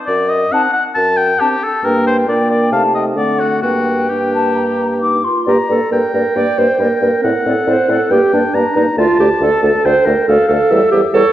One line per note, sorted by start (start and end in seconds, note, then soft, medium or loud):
0.07 0.45 F#2 medium
0.07 0.31 D5 medium
0.29 0.54 D#5 medium
0.52 0.68 C4 soft
0.52 0.69 D#4 soft
0.52 0.73 F#5 medium
0.52 0.61 A5 soft
0.73 0.83 F#5 medium
0.95 1.33 F#2 medium
0.95 1.19 A5 medium
1.17 1.41 G5 medium
1.40 1.56 C4 soft
1.40 1.57 D4 soft
1.40 1.65 G4 medium
1.40 1.48 A5 soft
1.64 1.87 A4 medium
1.83 2.29 G2 soft
1.83 2.25 A#3 soft
1.83 2.26 D4 soft
1.83 2.07 A#4 medium
1.83 2.25 G5 soft
2.07 2.17 C5 medium
2.28 2.71 A#2 soft
2.28 2.74 A#3 soft
2.28 2.74 D4 soft
2.28 2.50 D5 medium
2.28 2.74 G5 soft
2.50 2.72 D5 medium
2.72 3.18 C3 soft
2.72 3.15 A3 soft
2.72 3.19 D#4 soft
2.72 2.82 F5 medium
2.72 2.94 A5 soft
2.95 3.05 D#5 soft
2.95 3.01 G5 soft
3.16 3.62 D3 soft
3.16 3.64 A3 soft
3.16 3.63 C4 soft
3.16 3.41 D5 medium
3.16 3.65 F#5 soft
3.40 3.62 F#4 medium
3.62 5.21 G2 soft
3.62 4.09 A#3 soft
3.62 4.09 D4 soft
3.62 4.11 F#4 medium
3.62 4.10 G5 soft
4.09 5.23 A#3 soft
4.09 5.00 D4 soft
4.09 5.25 G4 soft
4.09 4.32 G5 soft
4.34 4.57 A5 soft
4.55 4.78 A#5 soft
4.79 4.85 A#5 soft
5.00 5.26 D#4 soft
5.00 5.25 D6 soft
5.24 5.47 F4 soft
5.24 5.45 C6 soft
5.45 5.57 G2 soft
5.45 5.58 A#3 soft
5.45 5.58 G4 medium
5.45 5.51 D5 soft
5.45 5.89 A#5 medium
5.68 5.79 G2 soft
5.68 5.80 A#3 soft
5.68 5.93 A4 medium
5.68 5.74 D5 soft
5.91 6.01 G2 soft
5.91 6.01 A#3 soft
5.91 6.13 A#4 medium
5.91 5.97 D5 soft
5.91 7.21 G5 medium
6.13 6.24 G2 soft
6.13 6.23 A#3 soft
6.13 6.38 A#4 medium
6.13 6.21 D5 soft
6.36 6.46 G2 soft
6.36 6.46 A#3 soft
6.36 6.42 D5 soft
6.36 6.60 D5 medium
6.57 6.68 G2 soft
6.57 6.67 A#3 soft
6.57 6.82 C5 medium
6.57 6.64 D5 soft
6.79 6.89 G2 soft
6.79 6.90 A#3 soft
6.79 7.02 A#4 medium
6.79 6.87 D5 soft
7.01 7.11 G2 soft
7.01 7.11 A#3 soft
7.01 7.48 A#4 medium
7.01 7.07 D5 soft
7.22 7.34 A2 soft
7.22 7.32 C4 soft
7.22 7.30 D5 soft
7.22 8.12 F#5 medium
7.45 7.55 A2 soft
7.45 7.55 C4 soft
7.45 7.70 A4 medium
7.45 7.52 D5 soft
7.66 7.77 A2 soft
7.66 7.77 C4 soft
7.66 7.92 C5 medium
7.66 7.72 D5 soft
7.88 7.98 A2 soft
7.88 7.98 C4 soft
7.88 8.11 A4 medium
7.88 7.95 D5 soft
8.10 8.20 G2 medium
8.10 8.20 A#3 soft
8.10 8.33 G4 medium
8.10 8.16 D5 soft
8.10 8.56 G5 medium
8.33 8.42 G2 soft
8.33 8.43 A#3 soft
8.33 8.54 D4 medium
8.33 8.39 D5 soft
8.53 8.64 G2 medium
8.53 8.64 A#3 soft
8.53 8.76 D4 medium
8.53 8.59 D5 soft
8.53 8.97 A#5 medium
8.75 8.85 G2 medium
8.75 8.86 A#3 soft
8.75 8.86 D#4 medium
8.75 8.82 D5 soft
8.97 9.07 D2 medium
8.97 9.08 A3 medium
8.97 9.19 F4 medium
8.97 9.03 D5 soft
8.97 9.87 A5 medium
9.19 9.29 D2 medium
9.19 9.30 A3 soft
9.19 9.29 G4 medium
9.19 9.27 D5 soft
9.41 9.51 D2 medium
9.41 9.51 A3 soft
9.41 9.63 A4 medium
9.41 9.48 D5 soft
9.62 9.72 D2 medium
9.62 9.73 A3 soft
9.62 9.87 A4 medium
9.62 9.69 D5 soft
9.85 9.94 D2 medium
9.85 9.95 A3 soft
9.85 10.07 C5 medium
9.85 9.91 D5 soft
9.85 10.28 G5 medium
10.05 10.15 D2 medium
10.05 10.16 A3 medium
10.05 10.29 A#4 medium
10.05 10.13 D5 soft
10.28 10.37 D2 medium
10.28 10.38 A3 medium
10.28 10.48 A4 medium
10.28 10.35 D5 soft
10.28 10.72 F5 medium
10.48 10.59 D2 medium
10.48 10.59 A3 soft
10.48 10.91 A4 medium
10.48 10.57 D5 medium
10.70 10.80 E2 medium
10.70 10.82 G3 medium
10.70 10.79 C#5 medium
10.70 11.14 E5 medium
10.91 11.02 E2 medium
10.91 11.02 G3 medium
10.91 11.01 G4 medium
10.91 10.99 C#5 medium
11.13 11.23 E2 medium
11.13 11.23 G3 medium
11.13 11.32 A4 medium
11.13 11.20 C#5 medium
11.13 11.32 C#5 medium